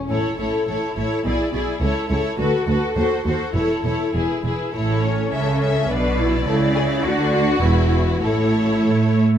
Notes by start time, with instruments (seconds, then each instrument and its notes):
0.09 double bass section A1, cello section A2, viola section E4, violin section A4 C#5
0.38 double bass section A1, cello section A2, viola section E4, violin section A4 C#5
0.67 double bass section A1, cello section A2, viola section E4, violin section A4 C#5
0.96 double bass section A1, cello section A2, viola section E4, violin section A4 C#5
1.25 double bass section B1, cello section B2, viola section E4, violin section G#4 D5
1.53 double bass section B1, cello section B2, viola section E4, violin section G#4 D5
1.81 cello section C#2, double bass section C#2, viola section E4, violin section A4 C#5
2.09 double bass section C#2, cello section C#2, viola section E4, violin section A4 C#5
2.37 double bass section D2, cello section D2, viola section F#4, violin section A4 B4
2.66 double bass section D2, cello section D2, viola section F#4, violin section A4 B4
2.95 double bass section D#2, cello section D#2, viola section F#4, violin section A4 C5
3.25 double bass section D#2, cello section D#2, viola section F#4, violin section A4 C5
3.54 double bass section E1, cello section E2, viola section E4, violin section A4 C#5
3.85 double bass section E1, cello section E2, viola section E4, violin section A4 C#5
4.14 double bass section E1, cello section E2, viola section E4, violin section G#4 B4
4.44 double bass section E1, cello section E2, viola section E4, violin section G#4 B4
4.74 double bass section A1, cello section A2, viola section E4, violin section A4 C#5
5.03 viola section C#4
5.32 double bass section C#2, cello section C#3, violin section A4 E5
5.62 violin section E5
5.89 double bass section B1, cello section B2, viola section D4, violin section B4 D5
6.19 viola section E4
6.47 double bass section C#2, cello section C#3, viola section E4, violin section A4
6.76 violin section G#4
7.04 double bass section D2, cello section D3, viola section F#4, violin section F#4
7.33 viola section F#4
7.62 double bass section E1, cello section E2, viola section E4, violin section B4
8.22 double bass section A1, cello section A2, viola section E4, violin section A4 C#5
8.84 double bass section A2, cello section A3